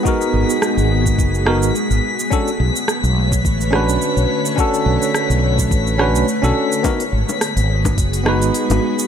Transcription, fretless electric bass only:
X:1
M:4/4
L:1/16
Q:"Swing 16ths" 1/4=106
K:Blyd
V:1 name="Fretless electric bass" clef=bass
z2 G,,, z2 G,,,3 F,,,3 G,,, z G,,, z2 | z2 B,,, z2 B,,,3 =A,,,3 B,,, z B,,, z2 | z2 B,,, z2 B,,,3 =A,,,3 B,,, z B,,, z2 | z2 G,,, z2 G,,,3 F,,,3 G,,, z G,,, z2 |]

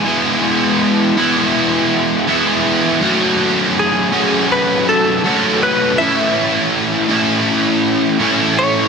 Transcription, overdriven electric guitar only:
X:1
M:4/4
L:1/8
Q:1/4=81
K:E
V:1 name="Overdriven electric guitar"
[E,G,B,E]3 [E,G,B,E]3 [E,G,B,E]2 | [F,A,CF]3 [F,A,CF]3 [F,A,CF]2 | [A,,E,A,CE]3 [A,,E,A,CE]3 [A,,E,A,CE]2 |]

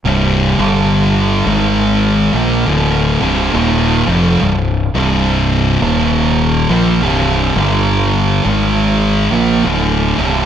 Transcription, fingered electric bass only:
X:1
M:4/4
L:1/8
Q:"Swing" 1/4=69
K:Cm
V:1 name="Fingered electric bass" clef=bass
C,,, G,,,2 A,,,2 B,,, D,,, C,,, | E,,, F,,, C,,, C,,,2 E,,,2 B,,, | C,,, G,,,2 A,,,2 B,,, D,,, C,,, |]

